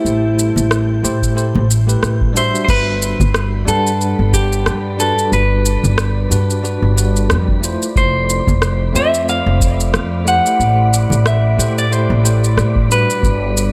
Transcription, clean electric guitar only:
0.00 1.99 E4 medium
2.37 2.63 C5 loud
2.65 2.69 C5 medium
2.70 3.68 B4 loud
3.68 4.36 A4 loud
4.34 5.01 G4 medium
5.00 5.33 A4 medium
5.33 6.28 B4 medium
7.97 8.96 C5 loud
8.96 9.26 E5 loud
9.29 10.28 F5 loud
10.28 11.27 F#5 loud
11.27 11.78 E5 loud
11.78 11.93 D5 medium
11.93 12.92 C5 loud
12.92 13.72 B4 loud

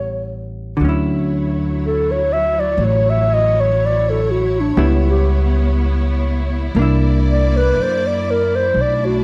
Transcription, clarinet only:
0.00 0.47 C#5 medium
1.86 2.13 A4 medium
2.11 2.34 C#5 medium
2.33 2.61 E5 medium
2.60 2.86 D5 medium
2.84 3.11 C#5 medium
3.10 3.35 E5 medium
3.34 3.62 D#5 medium
3.60 3.87 C#5 medium
3.86 4.11 D5 medium
4.10 4.33 A4 medium
4.31 4.62 F#4 medium
4.60 4.88 D4 medium
4.87 5.10 E4 medium
5.11 5.30 G4 medium
7.30 7.58 D5 medium
7.57 7.83 B4 medium
7.82 8.08 C5 medium
8.07 8.32 D5 medium
8.31 8.57 A#4 medium
8.55 8.83 C5 medium
8.81 9.07 D5 medium
9.05 9.24 F#4 medium

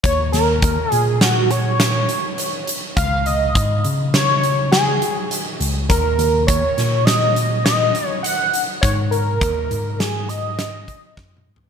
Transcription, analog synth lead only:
0.03 0.31 C#5 loud
0.32 0.92 A#4 loud
0.92 1.22 G#4 loud
1.21 1.52 F#4 medium
1.51 2.68 C#5 medium
2.96 3.28 F5 loud
3.26 3.85 D#5 medium
4.14 4.69 C#5 loud
4.72 5.27 G#4 medium
5.89 6.44 A#4 medium
6.47 7.07 C#5 medium
7.05 7.64 D#5 loud
7.64 8.07 D#5 loud
8.07 8.20 C#5 loud
8.23 8.64 F#5 loud
8.81 8.95 C#5 medium
9.11 10.01 A#4 medium
9.99 10.30 G#4 medium
10.29 11.46 D#5 medium

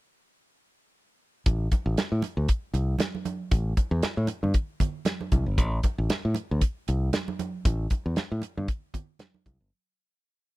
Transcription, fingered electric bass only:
1.46 1.67 A1 medium
1.86 1.95 A1 medium
2.12 2.21 A2 medium
2.37 2.46 D2 medium
2.74 2.95 C2 medium
3.52 3.73 A1 medium
3.91 4.01 E2 medium
4.03 muted fingered electric bass stroke soft
4.17 4.27 A2 medium
4.43 4.52 G2 medium
5.32 5.44 C2 medium
5.46 5.58 G1 medium
5.58 5.79 A1 medium
5.98 6.08 A1 medium
6.25 6.34 A2 medium
6.51 6.60 D2 medium
6.89 7.09 C2 medium
7.65 7.86 A1 medium
8.06 8.15 E2 medium
8.18 muted fingered electric bass stroke soft
8.32 8.41 A2 medium
8.57 8.66 G2 medium
9.46 9.58 C2 medium
9.61 9.70 G1 medium

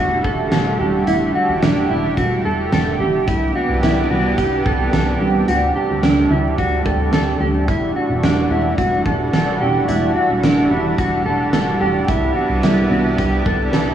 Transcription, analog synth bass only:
0.00 0.21 E1 medium
0.24 0.49 E1 medium
0.52 0.77 E1 medium
0.80 1.04 E1 medium
1.07 1.32 E1 loud
1.48 1.61 E1 medium
1.62 1.87 E1 medium
1.90 2.14 E1 loud
2.17 2.42 E1 loud
2.45 2.69 E1 medium
2.73 2.97 E1 medium
3.00 3.24 E1 loud
3.28 3.52 C2 loud
3.69 3.81 C2 medium
3.82 4.07 C2 loud
4.11 4.35 C2 medium
4.38 4.62 C2 medium
4.66 4.90 C2 medium
4.93 5.17 C2 medium
5.20 5.44 C2 loud
5.48 5.72 D2 loud
5.90 6.01 D2 loud
6.03 6.27 D2 medium
6.30 6.55 D2 medium
6.58 6.82 D2 loud
6.86 7.10 D2 medium
7.13 7.37 D2 medium
7.41 7.70 D2 medium
7.68 7.92 E1 loud
8.09 8.21 E1 medium
8.23 8.47 E1 loud
8.51 8.75 E1 medium
8.78 9.02 E1 medium
9.06 9.30 E1 loud
9.33 9.57 E1 medium
9.61 9.85 E1 medium
9.88 10.12 E1 loud
10.29 10.42 E1 medium
10.43 10.67 E1 loud
10.70 10.95 E1 medium
10.98 11.22 E1 loud
11.25 11.50 E1 medium
11.53 11.77 E1 medium
11.80 12.10 E1 medium
12.08 12.33 C2 loud
12.49 12.62 C2 medium
12.63 12.88 C2 loud
12.90 13.15 C2 medium
13.18 13.43 C2 medium
13.46 13.70 C2 medium
13.73 13.94 C2 medium

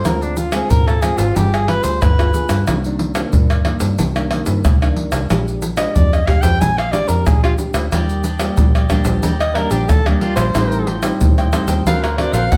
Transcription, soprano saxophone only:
0.05 0.24 A#4 medium
0.23 0.38 D4 medium
0.37 0.55 F4 medium
0.53 0.72 G#4 medium
0.70 0.89 A#4 medium
0.87 1.03 A4 medium
1.01 1.19 G#4 medium
1.18 1.37 F4 medium
1.36 1.55 G4 medium
1.53 1.70 G#4 medium
1.68 1.85 B4 medium
1.83 2.03 C5 medium
2.01 2.67 B4 medium
5.77 5.97 D#5 medium
5.95 6.14 D5 medium
6.13 6.28 D#5 medium
6.26 6.43 F5 medium
6.42 6.62 G5 medium
6.60 6.79 G#5 loud
6.78 6.93 F5 medium
6.92 7.09 D5 medium
7.08 7.28 A#4 medium
7.27 7.43 G#4 medium
7.43 7.53 F4 medium
9.41 9.57 D#5 medium
9.55 9.73 A#4 medium
9.71 9.91 G4 medium
9.89 10.09 A4 medium
10.07 10.22 D4 medium
10.21 10.35 F4 medium
10.36 10.99 C5 medium
11.87 12.04 F5 medium
12.03 12.18 A#4 medium
12.17 12.34 D5 loud
12.33 12.53 F5 medium
12.51 12.57 F#5 loud

